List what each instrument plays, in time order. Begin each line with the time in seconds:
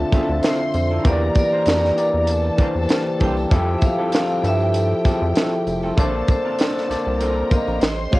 Already playing: tine electric piano D3 C4 F4 D5 E5, french horn section D3 C4 D4 F4, string section A4 A5, vibraphone E5
0.00 muted clean electric guitar stroke
0.12 analog synth bass D2, tine electric piano D3 C4 F4 E5, clean electric guitar F3 C4 E4 A4, kick, closed hi-hat, tambourine
0.29 analog synth bass D2, muted clean electric guitar stroke
0.43 clean electric guitar F3 C4 E4 A4, string section C5 C6, snare, closed hi-hat, tambourine
0.74 analog synth bass F2, muted clean electric guitar stroke, closed hi-hat, tambourine
0.91 clean electric guitar F3 C4 E4 A4
1.03 analog synth bass E2, tine electric piano E3 A#3 G4 C5, french horn section E3 A#3 D4 G4, clean electric guitar A#3 D4 G4 A#4, string section A#4 A#5, kick, closed hi-hat, tambourine
1.08 vibraphone D5
1.13 tine electric piano D5
1.35 muted clean electric guitar stroke, kick, closed hi-hat, tambourine
1.39 vibraphone D5
1.52 clean electric guitar A#3 D4 G4 C5
1.66 analog synth bass F2, clean electric guitar A3 C#4 F#4 A4, snare, closed hi-hat, tambourine
1.78 clean electric guitar A#3 D4 G4 A#4
1.85 snare
1.96 tine electric piano E3 A#3 G4 D5, muted clean electric guitar stroke, closed hi-hat, tambourine
2.14 analog synth bass E2, muted clean electric guitar stroke
2.28 string section A4 A5, closed hi-hat, tambourine
2.45 muted clean electric guitar stroke
2.57 analog synth bass E2, tine electric piano E3 A#3 G4 D5, clean electric guitar A#3 D4 G4 A#4, kick, closed hi-hat, tambourine
2.62 vibraphone C5
2.75 analog synth bass E2, muted clean electric guitar stroke, tambourine
2.89 snare, closed hi-hat, tambourine
3.06 muted clean electric guitar stroke
3.19 analog synth bass C2, tine electric piano E3 A#3 G4 A4, clean electric guitar A#3 D4 G4 C5, kick, closed hi-hat, tambourine
3.23 vibraphone G5
3.37 muted clean electric guitar stroke, tambourine
3.50 analog synth bass F2, tine electric piano F3 E4 G4 A4, french horn section F3 C4 G4 A4, clean electric guitar G3 C4 E4 A4, string section G4 G5, kick, closed hi-hat, tambourine
3.78 vibraphone E5, muted clean electric guitar stroke, kick, closed hi-hat, tambourine
3.85 vibraphone F5
3.97 tine electric piano F3 E4 G4 A4, clean electric guitar G3 C4 E4 A4
4.12 clean electric guitar G3 C4 E4 A4, vibraphone F5, snare, closed hi-hat, tambourine
4.30 tambourine
4.42 analog synth bass G2, tine electric piano F3 E4 G4 A4, muted clean electric guitar stroke, closed hi-hat, tambourine
4.47 vibraphone E5
4.60 muted clean electric guitar stroke, tambourine
4.74 closed hi-hat, tambourine
4.91 muted clean electric guitar stroke
5.04 analog synth bass F2, tine electric piano F3 E4 G4 G#4, clean electric guitar G3 C4 E4 A4, kick, closed hi-hat, tambourine
5.13 tine electric piano A4
5.22 analog synth bass F2, muted clean electric guitar stroke
5.35 clean electric guitar G3 C4 E4 A4, snare, closed hi-hat, tambourine
5.66 analog synth bass F1, muted clean electric guitar stroke, closed hi-hat, tambourine
5.83 clean electric guitar G3 C4 E4 A4, tambourine
5.96 analog synth bass A#1, french horn section D3 A#3 C4, clean electric guitar F3 C4 D4 A4, tine electric piano A#3 A4 C5 D5, string section A4 A5, vibraphone C5, kick, closed hi-hat, tambourine
6.28 vibraphone C5, muted clean electric guitar stroke, kick, closed hi-hat, tambourine
6.45 clean electric guitar F3 C4 D4 A#4
6.58 clean electric guitar F3 C4 D4 A4, snare, closed hi-hat, tambourine
6.78 snare
6.88 analog synth bass C2, tine electric piano A#3 A4 C5 D5, muted clean electric guitar stroke, snare, closed hi-hat, tambourine
7.06 analog synth bass C2, muted clean electric guitar stroke
7.20 clean electric guitar F3 C4 D4 A4, string section A#4 A#5, closed hi-hat, tambourine
7.49 analog synth bass A#1, tine electric piano A#3 A#4 C5 F5, muted clean electric guitar stroke, kick, closed hi-hat, tambourine
7.53 vibraphone D#5
7.67 analog synth bass A#1, muted clean electric guitar stroke, tambourine
7.81 analog synth bass A1, french horn section G3 C#4 A4, string section C5 C6, snare, closed hi-hat, tambourine
7.98 muted clean electric guitar stroke
8.11 analog synth bass F1, tine electric piano A3 F4 G4 C5 C#5, clean electric guitar A3 C#4 G4 C#5, vibraphone F5, kick, closed hi-hat, tambourine